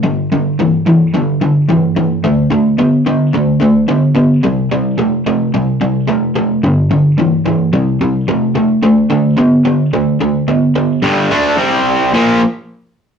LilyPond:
\new Staff \with { instrumentName = "Overdriven electric guitar" } { \clef bass \time 4/4 \key g \major \tempo 4 = 109 <g, d>8 <g, d>8 <g, e>8 <g, e>8 <g, d>8 <g, d>8 <g, e>8 <g, e>8 | <d a>8 <d a>8 <d b>8 <d b>8 <d a>8 <d a>8 <d b>8 <d b>8 | <c g>8 <c g>8 <c a>8 <c a>8 <c g>8 <c g>8 <c a>8 <c a>8 | <g, d>8 <g, d>8 <g, e>8 <g, e>8 <c g>8 <c g>8 <c a>8 <c a>8 |
<d a>8 <d a>8 <d b>8 <d b>8 <d a>8 <d a>8 <d b>8 <d b>8 | <g, d g>8 <d a d'>8 <c g c'>4 <bes, f bes>8 r4. | }